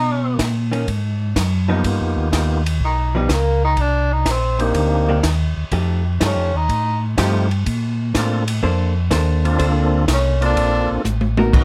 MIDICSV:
0, 0, Header, 1, 6, 480
1, 0, Start_track
1, 0, Key_signature, -2, "major"
1, 0, Tempo, 484653
1, 1828, Time_signature, 4, 2, 24, 8
1, 11529, End_track
2, 0, Start_track
2, 0, Title_t, "Tonewheel organ"
2, 0, Program_c, 0, 16
2, 1664, Note_on_c, 0, 58, 63
2, 1668, Note_on_c, 0, 59, 61
2, 1678, Note_on_c, 0, 63, 56
2, 1682, Note_on_c, 0, 65, 60
2, 1691, Note_on_c, 0, 67, 72
2, 2271, Note_off_c, 0, 58, 0
2, 2273, Note_off_c, 0, 59, 0
2, 2278, Note_off_c, 0, 63, 0
2, 2280, Note_off_c, 0, 65, 0
2, 2284, Note_off_c, 0, 67, 0
2, 2288, Note_on_c, 0, 58, 61
2, 2292, Note_on_c, 0, 59, 54
2, 2301, Note_on_c, 0, 63, 60
2, 2303, Note_on_c, 0, 65, 56
2, 2311, Note_on_c, 0, 67, 68
2, 2596, Note_off_c, 0, 58, 0
2, 2598, Note_off_c, 0, 59, 0
2, 2602, Note_off_c, 0, 63, 0
2, 2603, Note_off_c, 0, 65, 0
2, 2607, Note_off_c, 0, 67, 0
2, 4542, Note_on_c, 0, 58, 75
2, 4545, Note_on_c, 0, 60, 65
2, 4551, Note_on_c, 0, 62, 63
2, 4559, Note_on_c, 0, 63, 64
2, 4560, Note_on_c, 0, 67, 75
2, 5149, Note_off_c, 0, 58, 0
2, 5151, Note_off_c, 0, 60, 0
2, 5154, Note_off_c, 0, 62, 0
2, 5158, Note_off_c, 0, 63, 0
2, 5158, Note_off_c, 0, 67, 0
2, 7104, Note_on_c, 0, 57, 73
2, 7114, Note_on_c, 0, 60, 67
2, 7118, Note_on_c, 0, 63, 65
2, 7119, Note_on_c, 0, 65, 68
2, 7126, Note_on_c, 0, 67, 78
2, 7402, Note_off_c, 0, 57, 0
2, 7407, Note_off_c, 0, 60, 0
2, 7409, Note_off_c, 0, 63, 0
2, 7410, Note_off_c, 0, 65, 0
2, 7413, Note_off_c, 0, 67, 0
2, 8064, Note_on_c, 0, 58, 67
2, 8067, Note_on_c, 0, 60, 66
2, 8067, Note_on_c, 0, 62, 64
2, 8074, Note_on_c, 0, 65, 63
2, 8084, Note_on_c, 0, 69, 79
2, 8362, Note_off_c, 0, 58, 0
2, 8364, Note_off_c, 0, 60, 0
2, 8364, Note_off_c, 0, 62, 0
2, 8367, Note_off_c, 0, 65, 0
2, 8372, Note_off_c, 0, 69, 0
2, 9354, Note_on_c, 0, 58, 82
2, 9359, Note_on_c, 0, 60, 79
2, 9359, Note_on_c, 0, 62, 73
2, 9362, Note_on_c, 0, 65, 69
2, 9366, Note_on_c, 0, 69, 88
2, 9954, Note_off_c, 0, 58, 0
2, 9957, Note_off_c, 0, 60, 0
2, 9957, Note_off_c, 0, 62, 0
2, 9958, Note_off_c, 0, 65, 0
2, 9960, Note_off_c, 0, 69, 0
2, 10310, Note_on_c, 0, 58, 76
2, 10311, Note_on_c, 0, 60, 77
2, 10314, Note_on_c, 0, 62, 72
2, 10325, Note_on_c, 0, 65, 74
2, 10326, Note_on_c, 0, 69, 90
2, 10913, Note_off_c, 0, 58, 0
2, 10913, Note_off_c, 0, 60, 0
2, 10915, Note_off_c, 0, 62, 0
2, 10920, Note_off_c, 0, 65, 0
2, 10921, Note_off_c, 0, 69, 0
2, 11414, Note_on_c, 0, 59, 83
2, 11419, Note_on_c, 0, 61, 68
2, 11424, Note_on_c, 0, 63, 73
2, 11424, Note_on_c, 0, 66, 72
2, 11430, Note_on_c, 0, 70, 85
2, 11529, Note_off_c, 0, 59, 0
2, 11529, Note_off_c, 0, 61, 0
2, 11529, Note_off_c, 0, 63, 0
2, 11529, Note_off_c, 0, 66, 0
2, 11529, Note_off_c, 0, 70, 0
2, 11529, End_track
3, 0, Start_track
3, 0, Title_t, "Hollow-body jazz guitar"
3, 0, Program_c, 1, 26
3, 708, Note_on_c, 1, 51, 57
3, 718, Note_on_c, 1, 58, 62
3, 718, Note_on_c, 1, 61, 69
3, 848, Note_off_c, 1, 51, 0
3, 852, Note_off_c, 1, 61, 0
3, 853, Note_off_c, 1, 58, 0
3, 1669, Note_on_c, 1, 53, 65
3, 1678, Note_on_c, 1, 63, 81
3, 1679, Note_on_c, 1, 59, 69
3, 1808, Note_off_c, 1, 53, 0
3, 1813, Note_off_c, 1, 59, 0
3, 1813, Note_off_c, 1, 63, 0
3, 3118, Note_on_c, 1, 53, 71
3, 3127, Note_on_c, 1, 59, 75
3, 3132, Note_on_c, 1, 63, 78
3, 3252, Note_off_c, 1, 53, 0
3, 3257, Note_off_c, 1, 59, 0
3, 3260, Note_off_c, 1, 63, 0
3, 5037, Note_on_c, 1, 51, 78
3, 5043, Note_on_c, 1, 58, 79
3, 5050, Note_on_c, 1, 62, 77
3, 5172, Note_off_c, 1, 51, 0
3, 5175, Note_off_c, 1, 58, 0
3, 5178, Note_off_c, 1, 62, 0
3, 5668, Note_on_c, 1, 53, 60
3, 5672, Note_on_c, 1, 57, 62
3, 5676, Note_on_c, 1, 67, 66
3, 5683, Note_on_c, 1, 63, 58
3, 5964, Note_off_c, 1, 53, 0
3, 5967, Note_off_c, 1, 57, 0
3, 5969, Note_off_c, 1, 67, 0
3, 5972, Note_off_c, 1, 63, 0
3, 6145, Note_on_c, 1, 53, 63
3, 6158, Note_on_c, 1, 57, 66
3, 6159, Note_on_c, 1, 63, 65
3, 6166, Note_on_c, 1, 67, 70
3, 6443, Note_off_c, 1, 53, 0
3, 6449, Note_off_c, 1, 57, 0
3, 6450, Note_off_c, 1, 63, 0
3, 6453, Note_off_c, 1, 67, 0
3, 7110, Note_on_c, 1, 57, 67
3, 7113, Note_on_c, 1, 67, 73
3, 7114, Note_on_c, 1, 53, 71
3, 7120, Note_on_c, 1, 63, 71
3, 7405, Note_off_c, 1, 57, 0
3, 7407, Note_off_c, 1, 53, 0
3, 7407, Note_off_c, 1, 67, 0
3, 7410, Note_off_c, 1, 63, 0
3, 8545, Note_on_c, 1, 58, 64
3, 8549, Note_on_c, 1, 62, 68
3, 8551, Note_on_c, 1, 69, 67
3, 8553, Note_on_c, 1, 72, 73
3, 8842, Note_off_c, 1, 58, 0
3, 8845, Note_off_c, 1, 62, 0
3, 8845, Note_off_c, 1, 69, 0
3, 8847, Note_off_c, 1, 72, 0
3, 9018, Note_on_c, 1, 62, 66
3, 9019, Note_on_c, 1, 58, 71
3, 9028, Note_on_c, 1, 69, 68
3, 9032, Note_on_c, 1, 72, 71
3, 9478, Note_off_c, 1, 58, 0
3, 9482, Note_off_c, 1, 62, 0
3, 9485, Note_off_c, 1, 72, 0
3, 9490, Note_off_c, 1, 69, 0
3, 9490, Note_on_c, 1, 58, 70
3, 9494, Note_on_c, 1, 62, 77
3, 9497, Note_on_c, 1, 72, 73
3, 9502, Note_on_c, 1, 69, 80
3, 10242, Note_off_c, 1, 58, 0
3, 10244, Note_off_c, 1, 62, 0
3, 10246, Note_off_c, 1, 72, 0
3, 10248, Note_off_c, 1, 69, 0
3, 11271, Note_on_c, 1, 59, 63
3, 11276, Note_on_c, 1, 63, 74
3, 11277, Note_on_c, 1, 66, 73
3, 11282, Note_on_c, 1, 70, 74
3, 11408, Note_off_c, 1, 59, 0
3, 11411, Note_off_c, 1, 63, 0
3, 11411, Note_off_c, 1, 66, 0
3, 11414, Note_off_c, 1, 70, 0
3, 11529, End_track
4, 0, Start_track
4, 0, Title_t, "Tenor saxophone"
4, 0, Program_c, 2, 66
4, 0, Note_on_c, 2, 63, 96
4, 358, Note_off_c, 2, 63, 0
4, 2821, Note_on_c, 2, 63, 75
4, 3113, Note_off_c, 2, 63, 0
4, 3128, Note_on_c, 2, 55, 68
4, 3288, Note_on_c, 2, 58, 79
4, 3303, Note_off_c, 2, 55, 0
4, 3602, Note_off_c, 2, 58, 0
4, 3608, Note_on_c, 2, 63, 102
4, 3768, Note_on_c, 2, 62, 87
4, 3783, Note_off_c, 2, 63, 0
4, 4084, Note_on_c, 2, 63, 89
4, 4099, Note_off_c, 2, 62, 0
4, 4269, Note_on_c, 2, 60, 78
4, 4284, Note_off_c, 2, 63, 0
4, 4571, Note_on_c, 2, 58, 80
4, 4586, Note_off_c, 2, 60, 0
4, 5193, Note_off_c, 2, 58, 0
4, 6199, Note_on_c, 2, 61, 83
4, 6502, Note_on_c, 2, 63, 100
4, 6517, Note_off_c, 2, 61, 0
4, 6969, Note_off_c, 2, 63, 0
4, 10037, Note_on_c, 2, 61, 79
4, 10321, Note_off_c, 2, 61, 0
4, 10349, Note_on_c, 2, 62, 99
4, 10780, Note_off_c, 2, 62, 0
4, 11529, End_track
5, 0, Start_track
5, 0, Title_t, "Tonewheel organ"
5, 0, Program_c, 3, 16
5, 0, Note_on_c, 3, 47, 84
5, 372, Note_off_c, 3, 47, 0
5, 388, Note_on_c, 3, 46, 93
5, 854, Note_off_c, 3, 46, 0
5, 868, Note_on_c, 3, 44, 83
5, 1334, Note_off_c, 3, 44, 0
5, 1347, Note_on_c, 3, 42, 97
5, 1813, Note_off_c, 3, 42, 0
5, 1823, Note_on_c, 3, 43, 85
5, 1980, Note_off_c, 3, 43, 0
5, 1988, Note_on_c, 3, 41, 57
5, 2142, Note_on_c, 3, 39, 68
5, 2148, Note_off_c, 3, 41, 0
5, 2293, Note_off_c, 3, 39, 0
5, 2305, Note_on_c, 3, 39, 83
5, 2772, Note_off_c, 3, 39, 0
5, 2780, Note_on_c, 3, 35, 80
5, 3249, Note_off_c, 3, 35, 0
5, 3257, Note_on_c, 3, 37, 97
5, 3728, Note_off_c, 3, 37, 0
5, 3736, Note_on_c, 3, 36, 83
5, 4207, Note_off_c, 3, 36, 0
5, 4213, Note_on_c, 3, 34, 87
5, 4685, Note_off_c, 3, 34, 0
5, 4695, Note_on_c, 3, 38, 84
5, 5167, Note_off_c, 3, 38, 0
5, 5181, Note_on_c, 3, 39, 101
5, 5491, Note_off_c, 3, 39, 0
5, 5511, Note_on_c, 3, 39, 38
5, 5587, Note_off_c, 3, 39, 0
5, 5663, Note_on_c, 3, 41, 90
5, 6130, Note_off_c, 3, 41, 0
5, 6143, Note_on_c, 3, 43, 90
5, 6300, Note_off_c, 3, 43, 0
5, 6304, Note_on_c, 3, 41, 53
5, 6465, Note_off_c, 3, 41, 0
5, 6470, Note_on_c, 3, 39, 73
5, 6617, Note_off_c, 3, 39, 0
5, 6622, Note_on_c, 3, 45, 82
5, 7089, Note_off_c, 3, 45, 0
5, 7106, Note_on_c, 3, 43, 95
5, 7571, Note_off_c, 3, 43, 0
5, 7593, Note_on_c, 3, 46, 84
5, 8055, Note_off_c, 3, 46, 0
5, 8064, Note_on_c, 3, 45, 93
5, 8530, Note_off_c, 3, 45, 0
5, 8546, Note_on_c, 3, 41, 92
5, 9011, Note_off_c, 3, 41, 0
5, 9023, Note_on_c, 3, 39, 97
5, 9490, Note_off_c, 3, 39, 0
5, 9502, Note_on_c, 3, 38, 89
5, 9969, Note_off_c, 3, 38, 0
5, 9986, Note_on_c, 3, 36, 93
5, 10451, Note_off_c, 3, 36, 0
5, 10462, Note_on_c, 3, 34, 87
5, 10771, Note_off_c, 3, 34, 0
5, 10801, Note_on_c, 3, 34, 40
5, 10875, Note_off_c, 3, 34, 0
5, 10935, Note_on_c, 3, 33, 100
5, 11406, Note_off_c, 3, 33, 0
5, 11422, Note_on_c, 3, 35, 82
5, 11529, Note_off_c, 3, 35, 0
5, 11529, End_track
6, 0, Start_track
6, 0, Title_t, "Drums"
6, 386, Note_on_c, 9, 38, 72
6, 387, Note_on_c, 9, 36, 20
6, 388, Note_on_c, 9, 44, 53
6, 388, Note_on_c, 9, 51, 66
6, 485, Note_off_c, 9, 38, 0
6, 486, Note_off_c, 9, 36, 0
6, 487, Note_off_c, 9, 44, 0
6, 487, Note_off_c, 9, 51, 0
6, 722, Note_on_c, 9, 51, 48
6, 821, Note_off_c, 9, 51, 0
6, 868, Note_on_c, 9, 36, 18
6, 870, Note_on_c, 9, 51, 59
6, 967, Note_off_c, 9, 36, 0
6, 969, Note_off_c, 9, 51, 0
6, 1347, Note_on_c, 9, 36, 27
6, 1347, Note_on_c, 9, 38, 73
6, 1349, Note_on_c, 9, 44, 65
6, 1349, Note_on_c, 9, 51, 72
6, 1446, Note_off_c, 9, 36, 0
6, 1446, Note_off_c, 9, 38, 0
6, 1448, Note_off_c, 9, 44, 0
6, 1448, Note_off_c, 9, 51, 0
6, 1825, Note_on_c, 9, 36, 21
6, 1825, Note_on_c, 9, 51, 65
6, 1924, Note_off_c, 9, 36, 0
6, 1924, Note_off_c, 9, 51, 0
6, 2303, Note_on_c, 9, 36, 21
6, 2305, Note_on_c, 9, 38, 67
6, 2307, Note_on_c, 9, 44, 50
6, 2307, Note_on_c, 9, 51, 71
6, 2402, Note_off_c, 9, 36, 0
6, 2404, Note_off_c, 9, 38, 0
6, 2406, Note_off_c, 9, 44, 0
6, 2406, Note_off_c, 9, 51, 0
6, 2638, Note_on_c, 9, 51, 72
6, 2737, Note_off_c, 9, 51, 0
6, 2781, Note_on_c, 9, 36, 22
6, 2880, Note_off_c, 9, 36, 0
6, 3259, Note_on_c, 9, 36, 19
6, 3260, Note_on_c, 9, 38, 72
6, 3262, Note_on_c, 9, 44, 52
6, 3262, Note_on_c, 9, 51, 65
6, 3358, Note_off_c, 9, 36, 0
6, 3359, Note_off_c, 9, 38, 0
6, 3361, Note_off_c, 9, 44, 0
6, 3361, Note_off_c, 9, 51, 0
6, 3732, Note_on_c, 9, 51, 58
6, 3737, Note_on_c, 9, 36, 18
6, 3831, Note_off_c, 9, 51, 0
6, 3836, Note_off_c, 9, 36, 0
6, 4215, Note_on_c, 9, 38, 70
6, 4217, Note_on_c, 9, 36, 18
6, 4217, Note_on_c, 9, 44, 52
6, 4217, Note_on_c, 9, 51, 73
6, 4314, Note_off_c, 9, 38, 0
6, 4316, Note_off_c, 9, 36, 0
6, 4316, Note_off_c, 9, 44, 0
6, 4316, Note_off_c, 9, 51, 0
6, 4550, Note_on_c, 9, 51, 49
6, 4649, Note_off_c, 9, 51, 0
6, 4699, Note_on_c, 9, 51, 60
6, 4700, Note_on_c, 9, 36, 18
6, 4798, Note_off_c, 9, 51, 0
6, 4799, Note_off_c, 9, 36, 0
6, 5182, Note_on_c, 9, 36, 20
6, 5183, Note_on_c, 9, 38, 74
6, 5185, Note_on_c, 9, 44, 55
6, 5185, Note_on_c, 9, 51, 76
6, 5281, Note_off_c, 9, 36, 0
6, 5282, Note_off_c, 9, 38, 0
6, 5284, Note_off_c, 9, 44, 0
6, 5284, Note_off_c, 9, 51, 0
6, 5661, Note_on_c, 9, 36, 24
6, 5661, Note_on_c, 9, 51, 63
6, 5760, Note_off_c, 9, 36, 0
6, 5760, Note_off_c, 9, 51, 0
6, 6145, Note_on_c, 9, 36, 20
6, 6146, Note_on_c, 9, 38, 74
6, 6148, Note_on_c, 9, 44, 53
6, 6148, Note_on_c, 9, 51, 74
6, 6244, Note_off_c, 9, 36, 0
6, 6245, Note_off_c, 9, 38, 0
6, 6247, Note_off_c, 9, 44, 0
6, 6247, Note_off_c, 9, 51, 0
6, 6627, Note_on_c, 9, 36, 22
6, 6630, Note_on_c, 9, 51, 55
6, 6726, Note_off_c, 9, 36, 0
6, 6729, Note_off_c, 9, 51, 0
6, 7107, Note_on_c, 9, 36, 26
6, 7108, Note_on_c, 9, 38, 72
6, 7110, Note_on_c, 9, 44, 55
6, 7110, Note_on_c, 9, 51, 77
6, 7206, Note_off_c, 9, 36, 0
6, 7207, Note_off_c, 9, 38, 0
6, 7209, Note_off_c, 9, 44, 0
6, 7209, Note_off_c, 9, 51, 0
6, 7439, Note_on_c, 9, 51, 45
6, 7539, Note_off_c, 9, 51, 0
6, 7590, Note_on_c, 9, 36, 24
6, 7590, Note_on_c, 9, 51, 63
6, 7689, Note_off_c, 9, 36, 0
6, 7689, Note_off_c, 9, 51, 0
6, 8068, Note_on_c, 9, 36, 19
6, 8068, Note_on_c, 9, 38, 72
6, 8070, Note_on_c, 9, 44, 64
6, 8070, Note_on_c, 9, 51, 74
6, 8167, Note_off_c, 9, 36, 0
6, 8167, Note_off_c, 9, 38, 0
6, 8169, Note_off_c, 9, 44, 0
6, 8169, Note_off_c, 9, 51, 0
6, 8396, Note_on_c, 9, 51, 78
6, 8495, Note_off_c, 9, 51, 0
6, 8546, Note_on_c, 9, 36, 19
6, 8645, Note_off_c, 9, 36, 0
6, 9020, Note_on_c, 9, 38, 70
6, 9022, Note_on_c, 9, 44, 53
6, 9022, Note_on_c, 9, 51, 69
6, 9024, Note_on_c, 9, 36, 21
6, 9119, Note_off_c, 9, 38, 0
6, 9121, Note_off_c, 9, 44, 0
6, 9121, Note_off_c, 9, 51, 0
6, 9123, Note_off_c, 9, 36, 0
6, 9360, Note_on_c, 9, 51, 48
6, 9459, Note_off_c, 9, 51, 0
6, 9502, Note_on_c, 9, 51, 65
6, 9503, Note_on_c, 9, 36, 22
6, 9601, Note_off_c, 9, 51, 0
6, 9602, Note_off_c, 9, 36, 0
6, 9982, Note_on_c, 9, 36, 20
6, 9983, Note_on_c, 9, 38, 78
6, 9985, Note_on_c, 9, 44, 62
6, 9985, Note_on_c, 9, 51, 76
6, 10081, Note_off_c, 9, 36, 0
6, 10082, Note_off_c, 9, 38, 0
6, 10084, Note_off_c, 9, 44, 0
6, 10084, Note_off_c, 9, 51, 0
6, 10319, Note_on_c, 9, 51, 48
6, 10418, Note_off_c, 9, 51, 0
6, 10463, Note_on_c, 9, 36, 23
6, 10468, Note_on_c, 9, 51, 58
6, 10563, Note_off_c, 9, 36, 0
6, 10567, Note_off_c, 9, 51, 0
6, 10941, Note_on_c, 9, 48, 51
6, 10943, Note_on_c, 9, 44, 65
6, 11040, Note_off_c, 9, 48, 0
6, 11042, Note_off_c, 9, 44, 0
6, 11102, Note_on_c, 9, 48, 63
6, 11202, Note_off_c, 9, 48, 0
6, 11265, Note_on_c, 9, 48, 85
6, 11364, Note_off_c, 9, 48, 0
6, 11423, Note_on_c, 9, 36, 69
6, 11426, Note_on_c, 9, 49, 69
6, 11522, Note_off_c, 9, 36, 0
6, 11525, Note_off_c, 9, 49, 0
6, 11529, End_track
0, 0, End_of_file